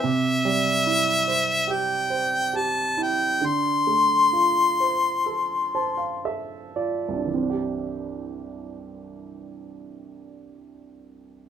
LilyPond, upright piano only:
\new Staff \with { instrumentName = "Upright piano" } { \time 4/4 \key c \major \tempo 4 = 62 << { r1 | r2 r8 a''16 f''16 e''8 d''8 | r1 | } \\ { c8 g8 e'8 c''8 g'8 c''8 g'8 e'8 | d8 a8 f'8 c''8 a'8 c''8 a'8 f'8 | <c, g, e c' d' g'>1 | } >> }